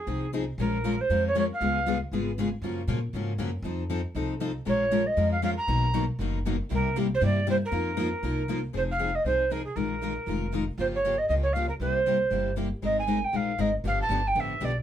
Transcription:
Already playing: G#4
0.07 C2 F3 C4 D#4 G#4
0.33 F3 C4 D#4 G#4
0.58 A#1 F3 G#3 C#4 F4 A#4
0.84 F3 G#3 C#4 F4 A#4
1.01 C5
1.10 F2 F3 G#3 C#4 F4 A#4
1.27 C#5
1.35 F3 G#3 C#4 F4 A#4 C#5
1.53 F5
1.61 C#2 C#3 G#3 B3 F4 G#4
1.87 C#3 G#3 B3 F4 G#4
2.12 G#1 C#3 G#3 B3 F4 G#4
2.38 C#3 G#3 B3 F4 G#4
2.62 F#2 C#3 F3 F#3 A#3 C#4 F4 F#4 A#4
2.88 A#2 C#3 F3 F#3 A#3 C#4 F4 F#4 A#4
3.13 G#2 C#3 F3 F#3 A#3 C#4 F4 F#4 A#4
3.38 F#2 C#3 F3 F#3 A#3 C#4 F4 F#4 A#4
3.62 F2 F3 C4 D#4 A4
3.90 F3 C4 D#4 A4
4.15 C2 F3 C4 D#4 A4
4.40 F3 C4 D#4 A4
4.65 A#1 F3 G#3 C#4 F4 A#4 C#5
4.91 F3 G#3 C#4 F4 A#4
5.06 D#5
5.17 F2 F3 G#3 C#4 F4 A#4
5.31 F5
5.42 F3 G#3 C#4 F4 A#4 F5
5.57 A#5
5.67 B1 B2 D#3 F#3 A#3 B3 D#4 F#4 A#4
5.94 B2 D#3 F#3 A#3 B3 D#4 F#4 A#4
6.19 F#1 B2 D#3 F#3 A#3 B3 D#4 F#4 A#4
6.46 B2 D#3 F#3 A#3 B3 D#4 F#4 A#4
6.70 C2 C3 G3 A#3 E4 G4 A#4
6.96 C3 G3 A#3 E4 G4
7.14 C5
7.21 G2 C3 G3 A#3 E4 G4
7.25 D5
7.47 C3 G3 A#3 E4 G4 C5
7.65 A#4
7.71 F2 F3 A#3 D#4 F4 A#4
7.97 F3 A#3 D#4 F4 A#4
8.23 C2 F3 A#3 D#4 F4 A#4
8.48 F3 A#3 D#4 F4 A#4
8.73 F1 F3 C4 D#4 G#4 C5
8.91 F5
8.99 F3 C4 D#4 G#4
9.15 D#5
9.24 C2 F3 C4 D#4 G#4 C5
9.50 F3 C4 D#4 G#4 A#4
9.64 G#4
9.76 A#1 D#3 G#3 D#4 F4 A#4
10.03 D#3 G#3 D#4 F4 A#4
10.27 F1 D#3 G#3 D#4 F4 A#4
10.53 D#3 G#3 D#4 F4 A#4
10.78 G1 C#3 F3 A#3 F4 G4 C5
10.95 C#5
11.05 C#3 F3 A#3 F4 G4
11.18 D#5
11.28 C#2 C#3 F3 A#3 F4 G4 D#5
11.42 C#5
11.53 C#3 F3 A#3 F4 G4 F5
11.68 A#4
11.80 C2 C3 G3 A#3 E4 G4 C5
12.06 C3 G3 A#3 E4 G4
12.31 G1 C3 G3 A#3 E4 G4
12.56 C3 G3 A#3 E4 G4
12.82 G#1 G#3 C4 D#4 A#4 D#5
12.99 G#5
13.07 G#3 C4 D#4 A#4
13.24 G5
13.33 A#1 G#3 C4 D#4 A#4 F5
13.58 G#1 G#3 C4 D#4 A#4 D#5
13.84 G1 D3 F3 B3 D4 G4 F5
14.02 A5
14.09 G1 D3 F3 B3 D4 G4
14.27 G5
14.35 A1 D3 F3 B3 D4 G4
14.40 E5
14.61 B1 D3 F3 B3 D4 G4 D5

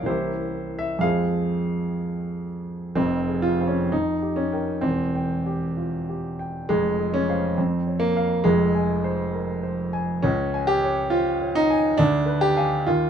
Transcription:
Already playing: A#3
0.03 C2 E3 A#3 C#4 G4 C5
0.08 E4
0.79 E5
0.99 F2 F3 G#3 C4 F5
1.03 G#4 C5
2.95 F1 F2 C4
3.29 G#4
3.42 F4
3.60 C5 F5
3.67 C#4
3.92 F2 D#4
4.22 G4
4.36 C#4
4.52 A#4 G5
4.81 E1 E2 C4
5.15 G5
5.46 G4
5.77 F4
6.09 G4
6.39 G5
6.69 F1 F2 G#3
7.00 G#4
7.14 C#4
7.29 C5 F5
7.57 F2 C4
7.87 C#5
8.00 A#3
8.17 F5
8.44 F1 F2 G#3
8.75 G#5
9.04 C5
9.33 A#4
9.63 C5
9.93 G#5
10.22 C#2 C#4
10.54 G#5
10.67 G4
10.84 C#5
11.10 F4 C5
11.42 C#5
11.55 D#4
11.70 G#5
11.98 D2 D4
12.26 B4
12.41 G4
12.57 F5 G#5
12.87 D#2 F4

